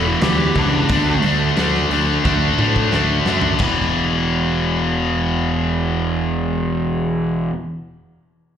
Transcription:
0.00 0.14 E1 medium
0.00 0.22 E2 medium
0.00 0.22 B2 medium
0.00 0.23 E3 medium
0.08 0.23 E4 medium
0.21 0.48 D2 medium
0.21 0.55 E2 medium
0.21 0.56 B2 medium
0.21 0.56 E3 medium
0.21 0.56 G4 medium
0.21 snare medium
0.21 open hi-hat medium
0.55 0.83 C#2 medium
0.55 0.87 E2 medium
0.55 0.88 B2 medium
0.55 0.88 E3 medium
0.55 1.23 D4 medium
0.55 kick medium
0.55 open hi-hat soft
0.89 1.16 D2 medium
0.89 1.24 D3 medium
0.89 1.25 A3 medium
0.89 1.26 D4 medium
0.89 kick loud
0.89 open hi-hat medium
1.23 1.50 D2 medium
1.23 1.57 D3 medium
1.23 1.57 A3 medium
1.23 open hi-hat soft
1.27 1.59 D4 medium
1.57 1.84 D2 medium
1.57 1.91 D3 medium
1.57 1.92 A3 medium
1.57 1.93 D4 medium
1.57 snare medium
1.57 open hi-hat medium
1.75 snare soft
1.91 2.17 D2 medium
1.91 2.24 D3 medium
1.91 2.24 A3 medium
1.91 2.25 D4 medium
1.91 open hi-hat soft
2.25 2.52 D2 medium
2.25 2.59 D3 medium
2.25 2.60 A3 medium
2.25 2.60 D4 loud
2.25 kick loud
2.25 snare soft
2.58 2.86 A2 medium
2.58 2.93 D3 medium
2.58 2.93 A3 medium
2.58 2.94 D4 medium
2.58 mid tom medium
2.76 kick medium
2.92 3.19 D2 medium
2.92 3.26 D3 medium
2.92 3.27 A3 medium
2.92 3.28 D4 medium
2.92 snare medium
3.25 3.52 F#2 medium
3.25 3.59 D3 medium
3.25 3.59 A3 medium
3.25 3.59 D4 medium
3.25 snare medium
3.41 floor tom medium
3.59 7.49 E1 medium
3.59 7.52 E2 medium
3.59 7.55 B2 medium
3.59 kick medium
3.59 crash medium
3.63 7.56 E3 medium

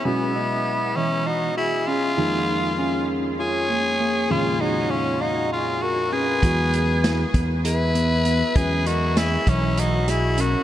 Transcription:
0.05 2.14 B2 medium
0.05 2.14 F#3 soft
0.05 2.14 G#3 medium
0.05 0.98 B3 medium
0.05 2.14 B3 medium
0.05 0.31 C#4 medium
0.05 0.96 E4 medium
0.36 0.88 D#5 medium
0.96 1.49 E3 medium
0.96 1.28 C#4 medium
0.96 1.29 E4 medium
1.27 1.57 D#4 medium
1.27 1.57 F#4 medium
1.57 1.89 E4 medium
1.57 1.83 F#4 medium
1.57 1.88 G#4 medium
1.87 2.14 C#4 medium
1.87 3.12 F4 medium
1.87 3.12 G#4 medium
2.17 4.26 F2 medium
2.17 4.26 D#3 soft
2.17 4.26 F3 medium
2.17 4.26 G#3 medium
2.17 4.27 A#3 medium
2.17 2.70 D#4 medium
2.79 3.31 C#4 medium
3.40 3.66 F4 medium
3.40 4.33 G#4 medium
3.40 4.32 C#5 medium
3.70 3.96 A#3 medium
4.00 4.26 A#3 medium
4.30 6.39 F2 medium
4.30 6.39 A#2 medium
4.30 6.39 C#3 medium
4.30 6.39 D#3 medium
4.30 6.39 G#3 medium
4.30 4.57 C#4 medium
4.30 4.62 F4 medium
4.30 4.63 G#4 medium
4.61 4.92 D#4 medium
4.61 5.13 D#4 medium
4.61 4.93 F#4 medium
4.91 5.23 C#4 medium
4.91 5.23 F4 medium
5.21 5.52 D#4 medium
5.21 5.52 F#4 medium
5.21 5.74 F5 medium
5.52 5.83 F4 medium
5.52 5.85 G#4 medium
5.82 6.14 F#4 medium
5.82 6.09 F#4 medium
5.82 6.15 A#4 medium
6.12 6.39 C#4 medium
6.12 7.38 G#4 medium
6.12 7.38 B4 medium
6.43 7.24 E2 medium
6.43 8.52 E3 medium
6.43 8.52 F#3 soft
6.43 8.52 G#3 medium
6.43 8.52 B3 medium
6.43 6.96 F#4 medium
6.43 kick loud
6.43 closed hi-hat medium
6.73 closed hi-hat medium
7.04 7.56 E4 medium
7.04 snare loud
7.04 closed hi-hat medium
7.34 8.42 E2 medium
7.34 kick medium
7.34 closed hi-hat medium
7.65 7.91 G#4 medium
7.65 8.58 B4 medium
7.65 8.59 E5 medium
7.65 closed hi-hat medium
7.95 8.21 B3 medium
7.95 closed hi-hat medium
8.25 8.52 B3 medium
8.25 closed hi-hat medium
8.55 9.36 E2 medium
8.55 10.63 E3 medium
8.55 10.63 F#3 medium
8.55 10.63 G#3 medium
8.55 10.63 B3 medium
8.55 8.82 C#4 medium
8.55 8.88 G#4 medium
8.55 8.89 B4 medium
8.55 kick medium
8.55 closed hi-hat medium
8.86 9.20 F#4 medium
8.86 9.20 A#4 medium
8.86 9.39 D#5 medium
8.86 closed hi-hat medium
9.17 9.50 E4 medium
9.17 9.50 G#4 medium
9.17 snare loud
9.17 closed hi-hat medium
9.47 10.55 B1 medium
9.47 10.00 E3 medium
9.47 9.81 C#4 medium
9.47 9.80 E4 medium
9.47 kick medium
9.47 closed hi-hat medium
9.77 10.11 D#4 medium
9.77 10.10 F#4 medium
9.77 closed hi-hat medium
10.08 10.42 E4 medium
10.08 10.34 F#4 medium
10.08 10.42 G#4 medium
10.08 snare soft
10.08 closed hi-hat medium
10.37 10.63 C#4 medium
10.37 10.63 F#4 medium
10.37 10.63 A#4 medium
10.37 closed hi-hat medium

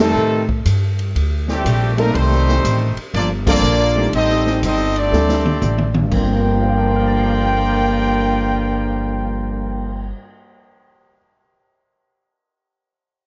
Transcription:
0.00 0.15 F2 medium
0.00 0.46 C3 loud
0.00 0.46 D#3 loud
0.00 0.14 G3 medium
0.00 0.46 G3 medium
0.00 0.14 A3 medium
0.00 0.46 A3 loud
0.00 0.14 C4 medium
0.00 0.46 C4 loud
0.00 0.15 D#4 medium
0.00 0.46 D#4 loud
0.00 0.15 A4 medium
0.00 0.46 A4 loud
0.15 0.64 A2 medium
0.49 kick medium
0.66 1.14 G2 medium
0.66 kick soft
0.66 hi-hat pedal medium
0.66 ride medium
0.99 ride medium
1.15 1.63 D2 medium
1.15 kick soft
1.15 ride medium
1.47 1.94 A2 medium
1.47 1.94 C3 medium
1.47 1.94 G3 medium
1.47 1.95 A3 medium
1.47 1.95 C4 medium
1.47 1.95 G4 loud
1.47 snare soft
1.65 2.13 A#1 loud
1.65 kick soft
1.65 hi-hat pedal medium
1.65 ride medium
1.96 2.60 G3 medium
1.96 2.15 G3 medium
1.96 2.61 A3 medium
1.96 2.14 A#3 medium
1.96 2.61 C4 medium
1.96 2.15 C4 medium
1.96 2.61 D#4 medium
1.96 2.14 D#4 medium
1.96 2.61 A4 medium
1.96 2.15 A#4 medium
1.96 ride medium
2.13 2.63 C2 medium
2.13 2.96 D#3 medium
2.13 2.96 G3 medium
2.13 2.97 A3 loud
2.13 2.96 C4 medium
2.13 2.97 D#4 medium
2.13 2.97 G4 loud
2.13 2.97 C5 loud
2.13 kick soft
2.13 ride medium
2.32 snare soft
2.49 snare medium
2.64 2.95 A1 loud
2.64 kick soft
2.64 hi-hat pedal medium
2.64 ride medium
2.96 muted upright bass stroke soft
2.96 ride medium
3.14 3.62 G1 loud
3.14 3.29 F3 loud
3.14 3.29 A#3 medium
3.14 3.29 A#3 loud
3.14 3.29 D4 medium
3.14 3.29 F4 medium
3.14 3.30 A4 medium
3.14 3.30 D5 loud
3.14 kick soft
3.14 ride medium
3.46 4.09 F3 medium
3.46 3.62 G3 medium
3.46 3.62 A#3 medium
3.46 4.09 A#3 loud
3.46 4.10 A#3 loud
3.46 3.62 C4 medium
3.46 4.09 D4 loud
3.46 3.62 F4 medium
3.46 4.10 F4 loud
3.46 3.62 A4 medium
3.46 4.10 A4 loud
3.46 4.10 D5 loud
3.46 kick medium
3.46 crash loud
3.63 4.11 A#1 medium
3.63 hi-hat pedal medium
3.95 4.11 G3 medium
3.95 4.11 A3 medium
3.95 4.11 C4 medium
3.95 4.12 D#4 medium
3.95 4.12 G4 medium
4.13 4.61 A1 medium
4.13 4.60 G3 medium
4.13 4.60 C4 loud
4.13 4.61 C4 medium
4.13 4.60 D#4 medium
4.13 4.60 G4 loud
4.13 4.60 A4 loud
4.13 4.60 D#5 loud
4.13 kick soft
4.13 ride medium
4.30 snare soft
4.46 snare soft
4.63 5.11 G1 medium
4.63 4.94 G3 medium
4.63 4.94 C4 loud
4.63 4.94 D#4 medium
4.63 4.94 G4 medium
4.63 4.94 A4 medium
4.63 4.94 D#5 loud
4.63 kick soft
4.63 hi-hat pedal medium
4.63 ride medium
4.96 5.96 G3 medium
4.96 5.96 A3 medium
4.96 5.96 C4 medium
4.96 5.96 D4 medium
4.96 5.96 G4 medium
4.96 5.96 A4 medium
4.96 5.96 D5 medium
4.96 ride medium
5.12 5.61 D2 medium
5.12 5.42 G3 medium
5.12 5.42 A3 soft
5.12 5.42 C4 medium
5.12 5.42 D4 medium
5.12 5.42 A4 medium
5.12 snare medium
5.29 snare medium
5.46 high tom medium
5.62 6.10 A1 loud
5.62 hi-hat pedal medium
5.62 high tom medium
5.78 high tom medium
5.94 high tom loud
6.00 10.03 G2 medium
6.05 10.08 G3 medium
6.10 10.11 G1 medium
6.10 10.11 G2 loud
6.10 10.11 D3 medium
6.10 10.11 F3 medium
6.10 10.14 A#3 medium
6.10 10.11 A#3 medium
6.10 10.12 F4 medium
6.10 10.11 A#4 medium
6.10 10.12 D5 medium
6.10 10.12 G5 medium
6.10 kick medium
6.10 crash medium
6.15 10.18 C4 medium
6.20 10.23 F4 medium
6.25 10.28 A#4 medium
6.45 cymbal swell soft
6.62 10.61 C5 soft
6.69 10.68 F5 soft
6.77 10.76 A5 soft
6.87 10.86 C6 soft
6.96 10.95 F6 soft
7.07 11.06 A6 soft
7.18 11.18 C7 soft

